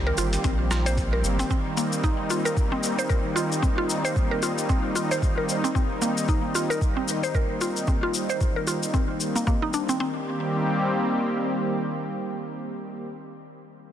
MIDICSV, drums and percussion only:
0, 0, Header, 1, 2, 480
1, 0, Start_track
1, 0, Key_signature, -3, "minor"
1, 0, Tempo, 530973
1, 1360, Time_signature, 4, 2, 24, 8
1, 12586, End_track
2, 0, Start_track
2, 0, Title_t, "Drums"
2, 161, Note_on_c, 9, 82, 79
2, 251, Note_off_c, 9, 82, 0
2, 297, Note_on_c, 9, 42, 51
2, 299, Note_on_c, 9, 82, 43
2, 387, Note_off_c, 9, 42, 0
2, 390, Note_off_c, 9, 82, 0
2, 399, Note_on_c, 9, 42, 38
2, 400, Note_on_c, 9, 36, 98
2, 402, Note_on_c, 9, 82, 30
2, 490, Note_off_c, 9, 36, 0
2, 490, Note_off_c, 9, 42, 0
2, 492, Note_off_c, 9, 82, 0
2, 641, Note_on_c, 9, 37, 71
2, 643, Note_on_c, 9, 82, 70
2, 731, Note_off_c, 9, 37, 0
2, 734, Note_off_c, 9, 82, 0
2, 780, Note_on_c, 9, 42, 51
2, 782, Note_on_c, 9, 82, 42
2, 870, Note_off_c, 9, 42, 0
2, 873, Note_off_c, 9, 82, 0
2, 879, Note_on_c, 9, 36, 104
2, 882, Note_on_c, 9, 42, 37
2, 884, Note_on_c, 9, 82, 31
2, 970, Note_off_c, 9, 36, 0
2, 972, Note_off_c, 9, 42, 0
2, 975, Note_off_c, 9, 82, 0
2, 1125, Note_on_c, 9, 82, 68
2, 1215, Note_off_c, 9, 82, 0
2, 1260, Note_on_c, 9, 42, 47
2, 1262, Note_on_c, 9, 82, 43
2, 1350, Note_off_c, 9, 42, 0
2, 1353, Note_off_c, 9, 82, 0
2, 1360, Note_on_c, 9, 36, 94
2, 1362, Note_on_c, 9, 82, 34
2, 1450, Note_off_c, 9, 36, 0
2, 1453, Note_off_c, 9, 82, 0
2, 1604, Note_on_c, 9, 82, 76
2, 1695, Note_off_c, 9, 82, 0
2, 1741, Note_on_c, 9, 82, 39
2, 1832, Note_off_c, 9, 82, 0
2, 1841, Note_on_c, 9, 36, 88
2, 1843, Note_on_c, 9, 82, 31
2, 1931, Note_off_c, 9, 36, 0
2, 1933, Note_off_c, 9, 82, 0
2, 2082, Note_on_c, 9, 82, 72
2, 2172, Note_off_c, 9, 82, 0
2, 2222, Note_on_c, 9, 82, 41
2, 2313, Note_off_c, 9, 82, 0
2, 2321, Note_on_c, 9, 36, 101
2, 2324, Note_on_c, 9, 82, 29
2, 2412, Note_off_c, 9, 36, 0
2, 2414, Note_off_c, 9, 82, 0
2, 2562, Note_on_c, 9, 82, 67
2, 2653, Note_off_c, 9, 82, 0
2, 2702, Note_on_c, 9, 82, 41
2, 2793, Note_off_c, 9, 82, 0
2, 2802, Note_on_c, 9, 36, 95
2, 2803, Note_on_c, 9, 82, 30
2, 2892, Note_off_c, 9, 36, 0
2, 2894, Note_off_c, 9, 82, 0
2, 3045, Note_on_c, 9, 82, 64
2, 3135, Note_off_c, 9, 82, 0
2, 3184, Note_on_c, 9, 82, 41
2, 3274, Note_off_c, 9, 82, 0
2, 3282, Note_on_c, 9, 36, 90
2, 3285, Note_on_c, 9, 82, 31
2, 3373, Note_off_c, 9, 36, 0
2, 3375, Note_off_c, 9, 82, 0
2, 3524, Note_on_c, 9, 82, 74
2, 3614, Note_off_c, 9, 82, 0
2, 3663, Note_on_c, 9, 82, 39
2, 3753, Note_off_c, 9, 82, 0
2, 3763, Note_on_c, 9, 36, 91
2, 3764, Note_on_c, 9, 82, 30
2, 3853, Note_off_c, 9, 36, 0
2, 3854, Note_off_c, 9, 82, 0
2, 4002, Note_on_c, 9, 82, 70
2, 4093, Note_off_c, 9, 82, 0
2, 4142, Note_on_c, 9, 82, 41
2, 4233, Note_off_c, 9, 82, 0
2, 4243, Note_on_c, 9, 36, 88
2, 4244, Note_on_c, 9, 82, 27
2, 4333, Note_off_c, 9, 36, 0
2, 4334, Note_off_c, 9, 82, 0
2, 4485, Note_on_c, 9, 82, 68
2, 4575, Note_off_c, 9, 82, 0
2, 4624, Note_on_c, 9, 82, 42
2, 4714, Note_off_c, 9, 82, 0
2, 4722, Note_on_c, 9, 36, 87
2, 4727, Note_on_c, 9, 82, 27
2, 4812, Note_off_c, 9, 36, 0
2, 4817, Note_off_c, 9, 82, 0
2, 4964, Note_on_c, 9, 82, 65
2, 5055, Note_off_c, 9, 82, 0
2, 5104, Note_on_c, 9, 82, 37
2, 5195, Note_off_c, 9, 82, 0
2, 5202, Note_on_c, 9, 36, 88
2, 5206, Note_on_c, 9, 82, 29
2, 5292, Note_off_c, 9, 36, 0
2, 5296, Note_off_c, 9, 82, 0
2, 5442, Note_on_c, 9, 82, 68
2, 5532, Note_off_c, 9, 82, 0
2, 5582, Note_on_c, 9, 82, 39
2, 5673, Note_off_c, 9, 82, 0
2, 5681, Note_on_c, 9, 36, 89
2, 5683, Note_on_c, 9, 82, 30
2, 5771, Note_off_c, 9, 36, 0
2, 5773, Note_off_c, 9, 82, 0
2, 5923, Note_on_c, 9, 82, 65
2, 6014, Note_off_c, 9, 82, 0
2, 6064, Note_on_c, 9, 82, 40
2, 6155, Note_off_c, 9, 82, 0
2, 6160, Note_on_c, 9, 36, 83
2, 6163, Note_on_c, 9, 82, 27
2, 6250, Note_off_c, 9, 36, 0
2, 6254, Note_off_c, 9, 82, 0
2, 6404, Note_on_c, 9, 82, 64
2, 6494, Note_off_c, 9, 82, 0
2, 6543, Note_on_c, 9, 82, 37
2, 6633, Note_off_c, 9, 82, 0
2, 6641, Note_on_c, 9, 36, 94
2, 6643, Note_on_c, 9, 82, 28
2, 6731, Note_off_c, 9, 36, 0
2, 6734, Note_off_c, 9, 82, 0
2, 6882, Note_on_c, 9, 82, 63
2, 6972, Note_off_c, 9, 82, 0
2, 7021, Note_on_c, 9, 82, 34
2, 7111, Note_off_c, 9, 82, 0
2, 7120, Note_on_c, 9, 36, 91
2, 7120, Note_on_c, 9, 82, 31
2, 7210, Note_off_c, 9, 82, 0
2, 7211, Note_off_c, 9, 36, 0
2, 7361, Note_on_c, 9, 82, 67
2, 7451, Note_off_c, 9, 82, 0
2, 7500, Note_on_c, 9, 82, 37
2, 7591, Note_off_c, 9, 82, 0
2, 7601, Note_on_c, 9, 36, 84
2, 7602, Note_on_c, 9, 82, 29
2, 7691, Note_off_c, 9, 36, 0
2, 7693, Note_off_c, 9, 82, 0
2, 7842, Note_on_c, 9, 82, 66
2, 7933, Note_off_c, 9, 82, 0
2, 7982, Note_on_c, 9, 82, 40
2, 8073, Note_off_c, 9, 82, 0
2, 8082, Note_on_c, 9, 36, 86
2, 8082, Note_on_c, 9, 82, 25
2, 8172, Note_off_c, 9, 82, 0
2, 8173, Note_off_c, 9, 36, 0
2, 8321, Note_on_c, 9, 82, 61
2, 8411, Note_off_c, 9, 82, 0
2, 8461, Note_on_c, 9, 82, 38
2, 8552, Note_off_c, 9, 82, 0
2, 8562, Note_on_c, 9, 36, 94
2, 8563, Note_on_c, 9, 82, 29
2, 8653, Note_off_c, 9, 36, 0
2, 8653, Note_off_c, 9, 82, 0
2, 8803, Note_on_c, 9, 82, 58
2, 8893, Note_off_c, 9, 82, 0
2, 8941, Note_on_c, 9, 82, 36
2, 9031, Note_off_c, 9, 82, 0
2, 12586, End_track
0, 0, End_of_file